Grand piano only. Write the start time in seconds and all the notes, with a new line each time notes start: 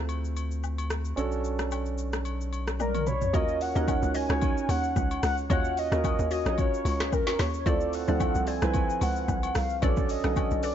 Already playing: C4 E4 F4 A4
1.16 C#4 D4 F#4 A4
2.80 D5
3.07 B5
3.33 C#4 F4 F#4 A#4
3.75 C#4 D#4 F#4 A#4
4.29 C#4 D#4 F#4 C#5
5.50 C#4 F4 F#4 C#5
5.91 C#4 F4 F#4 A#4
6.45 C#4 F4 F#4 C#5
7.66 C4 E4 F4 A4
8.08 F3 C4 E4 A4
8.62 F3 C4 E4 B4
9.82 C#4 D4 F#4 A4
10.24 D3 C#4 F#4 A4